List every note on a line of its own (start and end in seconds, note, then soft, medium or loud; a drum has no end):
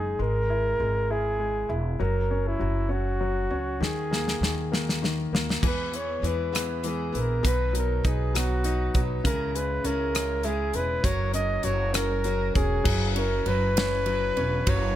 0.00 0.18 F#1 medium
0.00 0.19 G#3 soft
0.00 0.21 D#4 soft
0.00 0.20 G#4 medium
0.19 0.76 G#1 medium
0.19 0.79 G#3 medium
0.19 1.13 A#4 medium
0.50 1.09 E4 soft
0.80 1.66 G#1 medium
0.80 1.38 G#3 soft
1.11 1.68 E4 soft
1.11 1.74 G#4 medium
1.39 1.98 G#3 soft
1.69 1.98 E1 medium
1.69 1.98 E4 soft
2.00 2.56 F#1 medium
2.00 2.58 F#3 medium
2.00 2.49 A#4 medium
2.31 2.87 C#4 soft
2.48 2.93 E4 medium
2.59 3.46 F#1 medium
2.59 3.19 F#3 soft
2.89 3.49 C#4 soft
2.89 3.84 F#4 medium
3.21 3.78 F#3 soft
3.50 3.78 C#2 medium
3.50 3.79 C#4 soft
3.80 4.37 D#2 medium
3.80 4.41 D#3 medium
3.80 5.03 G#4 medium
3.80 snare soft
4.11 4.70 A#3 soft
4.11 snare medium
4.28 snare soft
4.41 5.28 D#2 medium
4.41 5.01 D#3 soft
4.41 snare medium
4.72 5.31 A#3 soft
4.72 snare medium
4.89 snare medium
5.02 5.61 D#3 soft
5.02 snare medium
5.32 5.61 D#2 medium
5.32 5.62 A#3 soft
5.32 snare medium
5.50 snare medium
5.62 6.20 E2 medium
5.62 5.92 E3 medium
5.62 6.22 E3 soft
5.62 5.93 G#3 medium
5.62 5.92 B3 medium
5.62 5.92 E4 medium
5.62 5.90 G#4 medium
5.62 kick medium
5.62 crash medium
5.67 5.97 B4 medium
5.91 6.52 B3 soft
5.91 6.22 B3 soft
5.91 6.22 E4 soft
5.91 6.22 G#4 soft
5.91 closed hi-hat soft
5.96 6.29 C#5 medium
6.22 7.10 E2 medium
6.22 6.83 E3 soft
6.22 6.52 G#3 soft
6.22 6.52 B3 soft
6.22 6.52 E4 medium
6.22 6.51 G#4 medium
6.22 closed hi-hat soft
6.28 6.90 B4 medium
6.52 6.84 E3 soft
6.52 6.82 G#3 soft
6.52 6.82 B3 soft
6.52 7.11 B3 soft
6.52 6.83 E4 medium
6.52 6.83 G#4 medium
6.52 cross-stick loud
6.52 closed hi-hat medium
6.83 7.43 E3 soft
6.83 7.14 G#3 soft
6.83 7.13 B3 medium
6.83 7.12 E4 medium
6.83 7.11 G#4 soft
6.83 closed hi-hat soft
6.88 7.20 G#4 medium
7.12 7.43 A#1 medium
7.12 7.43 B3 soft
7.12 7.44 E4 soft
7.12 7.44 G#4 soft
7.12 closed hi-hat soft
7.19 7.47 A#4 medium
7.43 8.01 B1 medium
7.43 9.20 B2 medium
7.43 7.74 B2 medium
7.43 7.74 D#3 medium
7.43 7.75 F#3 medium
7.43 7.74 B3 medium
7.43 7.73 D#4 medium
7.43 7.75 B4 medium
7.43 kick medium
7.43 closed hi-hat medium
7.48 7.74 B4 medium
7.73 8.33 F#3 soft
7.73 8.02 F#3 soft
7.73 8.03 B3 soft
7.73 8.03 D#4 soft
7.73 closed hi-hat medium
7.77 8.09 A#4 medium
8.04 8.91 B1 medium
8.04 8.34 F#3 soft
8.04 8.34 B3 medium
8.04 8.63 D#4 soft
8.04 8.34 D#4 medium
8.04 8.33 B4 soft
8.04 kick medium
8.04 closed hi-hat soft
8.08 8.39 G#4 medium
8.34 8.65 B2 soft
8.34 8.65 D#3 soft
8.34 8.93 F#3 soft
8.34 8.63 F#3 medium
8.34 8.65 B3 medium
8.34 8.65 D#4 medium
8.34 9.04 F#4 medium
8.34 8.65 B4 medium
8.34 cross-stick medium
8.34 closed hi-hat medium
8.64 8.95 F#3 soft
8.64 8.95 B3 soft
8.64 9.23 D#4 medium
8.64 8.95 D#4 medium
8.64 8.94 B4 medium
8.64 closed hi-hat soft
8.94 9.23 B1 medium
8.94 9.24 F#3 soft
8.94 9.25 F#3 soft
8.94 9.25 B3 soft
8.94 9.26 D#4 soft
8.94 9.25 B4 soft
8.94 kick medium
8.94 closed hi-hat soft
9.24 9.81 C#2 medium
9.24 11.00 C#3 medium
9.24 9.55 C#3 medium
9.24 9.55 G#3 medium
9.24 9.55 C#4 medium
9.24 9.54 E4 medium
9.24 9.53 G#4 medium
9.24 9.57 A#4 medium
9.24 kick medium
9.24 closed hi-hat medium
9.55 10.13 G#3 soft
9.55 9.85 C#4 soft
9.55 9.85 E4 soft
9.55 9.85 G#4 soft
9.55 9.88 B4 medium
9.55 closed hi-hat medium
9.84 10.70 C#2 medium
9.84 10.15 G#3 medium
9.84 11.00 C#4 soft
9.84 10.14 C#4 medium
9.84 10.14 E4 medium
9.84 10.14 G#4 medium
9.84 10.48 A#4 medium
9.84 closed hi-hat soft
10.14 10.45 C#3 medium
10.14 10.73 G#3 medium
10.14 10.43 G#3 medium
10.14 10.44 C#4 medium
10.14 10.45 E4 medium
10.14 10.45 G#4 medium
10.14 cross-stick loud
10.14 closed hi-hat medium
10.43 10.74 G#3 medium
10.43 10.75 C#4 medium
10.43 11.02 E4 medium
10.43 10.75 E4 medium
10.43 10.77 G#4 medium
10.43 10.74 G#4 medium
10.43 closed hi-hat soft
10.73 11.02 E1 medium
10.73 11.03 G#3 soft
10.73 11.04 C#4 soft
10.73 11.05 E4 soft
10.73 11.04 G#4 soft
10.73 11.06 B4 medium
10.73 closed hi-hat soft
11.03 11.61 F#1 medium
11.03 11.62 F#3 medium
11.03 11.34 F#3 medium
11.03 11.35 C#4 medium
11.03 11.34 F#4 medium
11.03 11.33 A#4 medium
11.03 11.34 C#5 loud
11.03 kick medium
11.03 closed hi-hat medium
11.34 11.92 C#4 soft
11.34 11.63 C#4 soft
11.34 11.64 F#4 soft
11.34 11.64 A#4 soft
11.34 11.66 D#5 medium
11.34 closed hi-hat medium
11.63 12.51 F#1 medium
11.63 12.23 F#3 medium
11.63 11.95 F#3 medium
11.63 11.94 C#4 medium
11.63 11.94 F#4 medium
11.63 11.93 A#4 medium
11.63 11.96 C#5 medium
11.63 closed hi-hat soft
11.93 12.24 F#3 medium
11.93 12.53 C#4 medium
11.93 12.25 C#4 medium
11.93 12.25 F#4 medium
11.93 12.25 A#4 medium
11.93 12.55 A#4 medium
11.93 cross-stick loud
11.93 closed hi-hat medium
12.24 12.83 F#3 medium
12.24 12.56 F#3 medium
12.24 12.56 C#4 medium
12.24 12.55 F#4 medium
12.24 12.54 A#4 medium
12.24 closed hi-hat soft
12.54 12.84 E1 medium
12.54 12.84 C#4 soft
12.54 12.86 C#4 soft
12.54 12.86 F#4 medium
12.54 13.12 G#4 medium
12.54 12.86 A#4 medium
12.54 kick medium
12.54 closed hi-hat soft
12.84 13.43 F#1 medium
12.84 13.44 F#3 medium
12.84 13.16 F#3 medium
12.84 13.17 C#4 medium
12.84 13.17 E4 medium
12.84 13.17 B4 medium
12.84 kick loud
12.84 crash medium
13.16 13.75 C#4 medium
13.16 13.47 C#4 soft
13.16 13.47 E4 soft
13.16 13.49 A#4 medium
13.16 ride soft
13.46 14.33 F#1 medium
13.46 14.05 F#3 medium
13.46 13.77 F#3 medium
13.46 13.77 C#4 medium
13.46 13.77 E4 medium
13.46 14.71 B4 loud
13.46 13.76 B4 medium
13.46 ride soft
13.77 14.06 F#3 medium
13.77 14.35 C#4 medium
13.77 14.06 C#4 medium
13.77 14.07 E4 medium
13.77 14.07 B4 medium
13.77 snare loud
13.77 ride medium
14.06 14.65 F#3 medium
14.06 14.37 F#3 medium
14.06 14.37 C#4 medium
14.06 14.36 E4 medium
14.06 14.35 B4 medium
14.06 ride soft
14.36 14.65 E1 medium
14.36 14.95 C#4 medium
14.36 14.66 C#4 soft
14.36 14.66 E4 medium
14.36 14.67 B4 medium
14.36 ride soft
14.66 14.96 F#1 loud
14.66 14.96 F#3 medium
14.66 14.96 C#4 medium
14.66 14.96 E4 medium
14.66 14.96 B4 medium
14.66 14.96 C#5 loud
14.66 kick loud
14.66 ride medium